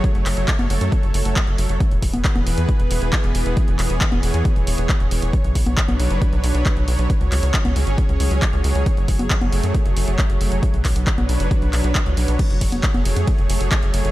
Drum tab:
CC |----------------|----------------|----------------|----------------|
RD |----------------|----------------|----------------|----------------|
HH |xxoxxxoxxxoxxxox|xxoxxxoxxxoxxxox|xxoxxxoxxxoxxxox|xxoxxxoxxxoxxxox|
CP |--x-x-------x---|----x-------x---|--x-x-------x---|----x-------x---|
CG |-----o----------|---o-o----------|-----o----------|---o-o----------|
BD |o---o---o---o---|o-o-o---o---o---|o---o---o---o---|o-o-o---o---o---|

CC |----------------|----------------|----------------|x---------------|
RD |----------------|----------------|----------------|x-x-x-x-x-x-x-x-|
HH |xxoxxxoxxxoxxxox|xxoxxxoxxxoxxxox|xxoxxxoxxxoxxxox|xxoxxxoxxxoxxxox|
CP |--x-x-------x---|----x-------x---|--x-x-----x-x---|----x-------x---|
CG |-----o----------|---o-o----------|-----o----------|---o-o----------|
BD |o---o---o---o---|o-o-o---o---o---|o-o-o---o---o---|o-o-o---o---o---|